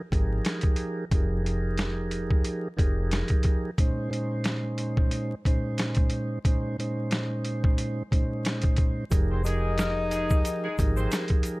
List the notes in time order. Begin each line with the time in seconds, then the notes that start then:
0.12 G#1 F3 D#4 G4 G#4 A#4, kick, closed hi-hat
0.45 snare, closed hi-hat
0.61 kick, closed hi-hat
0.76 closed hi-hat
1.11 F1 F3 D#4 G4 G#4 A#4, kick, closed hi-hat
1.43 F3 D#4 G4 G#4 A#4, closed hi-hat
1.78 snare, closed hi-hat
2.11 closed hi-hat
2.31 kick
2.45 closed hi-hat
2.77 F1 F3 D#4 G4 G#4 A#4, kick, closed hi-hat
3.11 snare, closed hi-hat
3.28 kick, closed hi-hat
3.43 kick, closed hi-hat
3.78 A#2 G#3 C#4 D#4 C5, kick, closed hi-hat
4.10 A#2 G#3 C#4 D#4 C5, closed hi-hat
4.44 snare, closed hi-hat
4.78 closed hi-hat
4.97 kick
5.11 closed hi-hat
5.45 A#2 G#3 C#4 D#4 C5, kick, closed hi-hat
5.78 snare, closed hi-hat
5.95 kick, closed hi-hat
6.10 closed hi-hat
6.45 A#2 G#3 C#4 D#4 C5, kick, closed hi-hat
6.78 A#2 G#3 C#4 D#4 C5, closed hi-hat
7.11 snare, closed hi-hat
7.45 closed hi-hat
7.64 kick
7.78 closed hi-hat
8.11 A#2 G#3 C#4 D#4 C5, kick, closed hi-hat
8.45 snare, closed hi-hat
8.62 kick, closed hi-hat
8.76 kick, closed hi-hat
9.10 F1 F3 D#4 G4 G#4 A#4, kick, closed hi-hat, shaker
9.30 C4 C5
9.44 F3 G#3 D#4 G4 G#4 A#4, closed hi-hat, shaker
9.78 A#3 A#4, snare, closed hi-hat, shaker
10.11 G#3 G#4, closed hi-hat, shaker
10.30 kick, shaker
10.45 closed hi-hat, shaker
10.64 G#3 G#4
10.78 G#1 F3 D#4 G4 G#4 A#4, kick, closed hi-hat, shaker
10.96 C4 C5, shaker
11.12 snare, closed hi-hat, shaker
11.28 kick, closed hi-hat
11.43 closed hi-hat, shaker